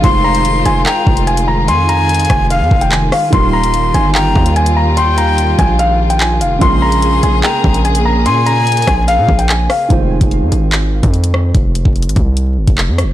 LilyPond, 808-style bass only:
\new Staff \with { instrumentName = "808-style bass" } { \clef bass \time 4/4 \key f \minor \tempo 4 = 146 f,,4. f,,8 r8 f,,4. | f,4. f,,8. f,16 f,,4 r8 | ees,,4. g,,4 ees,4.~ | ees,4. bes,,2 f,,8 |
bes,,4. bes,,8 r8 bes,,4. | bes,4. bes,,8. bes,16 bes,,4 r8 | f,,8. f,,8 f,16 aes,,4~ aes,,16 f,4~ f,16 | f,,8. f,,8 aes,,16 c,4 g,,16 f,,8 f,16. f,,16. | }